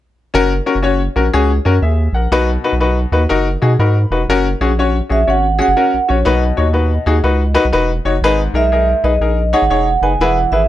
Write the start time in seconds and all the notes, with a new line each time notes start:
0.34 F#1 C#4 F#4 A#4
0.66 C#4 F#4 A#4
0.75 F#1
0.82 C#4 F#4 C#5
1.16 A#1 C#4 F#4 A#4
1.33 C#2 C#4 F#4 G#4
1.65 F#2 C#4 F#4 A#4
1.82 D#2 G#4 E5
2.13 A#1 A#4 F#5
2.32 B1 B2 D#4 F#4 B4
2.64 D#4 F#4 B4
2.73 B1
2.80 D#4 F#4 B4
3.12 D#2 D#4 F#4 B4
3.29 F#1 D#4 F#4 A#4
3.62 B2 D#4 F#4 G#4
3.79 G#2 D#4 F#4 A#4 B5
4.11 E1 D#4 F#4 B4
4.29 F#1 C#4 F#4 A#4
4.61 A#1 C#4 F#4 G#4
4.79 C#4 F#4 C#5
5.09 A#1 C#4 F#4 G#4 E5
5.27 G#1 C#4 F#4 C#5 F#5
5.59 C#4 F#4 G#4 F#5
5.68 F#1
5.77 C#4 F#4 A#4
5.94 A#1
6.08 A#1 C#4 F#4 C#5
6.25 B1 B2 D#4 F#4 B4 D#5
6.57 D#2 D#4 F#4 C#5
6.73 D#4 F#4 B4
7.06 D#2 D#4 F#4 G#4
7.24 C#2 D#4 F#4 B4
7.54 D#4 F#4 B4
7.65 B1
7.73 E1 D#4 F#4 B4
8.05 F#1 D#4 F#4 C#5
8.22 G#1 G#2 D#4 G#4 B4
8.54 B1 D#4 G#4 A#4 E5
8.72 D#4 G#4 A#4
9.04 B1 D#4 G#4 B4 D#5
9.20 A#1 D#4 G#4 A#4
9.53 D#4 G#4 C#5 F#5
9.62 G#1
9.70 E1 D#4 G#4 C#5
10.02 F#1 D#4 G#4 B4 G#5
10.20 E1 E3 E4 G#4 B4 F#5
10.52 G#1 E4 G#4 B4 E5